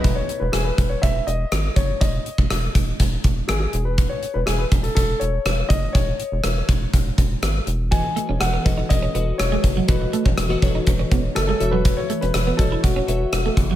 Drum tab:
HH |x-x-x-x-x-x-x-x-|x-x-x-x-x-x-x-x-|x-x-x-xxx-x-x-x-|x-x-x-x-x-x-x-x-|
SD |----r-------r---|----r-------r---|----r-------r---|----r-------r---|
BD |o-----o-o-----o-|o--o--o-o-o-----|o-----o-o-----o-|o-----o-o-o-----|

HH |x-x-x-x-x-x-x-x-|x-x-x-x-x-x-x-x-|x-xxx-x-x-x-x-x-|
SD |----r-------r---|----r-------r---|----r-------r---|
BD |o-----o-o-----o-|o--o--o-o-o-----|o-----o-o-----o-|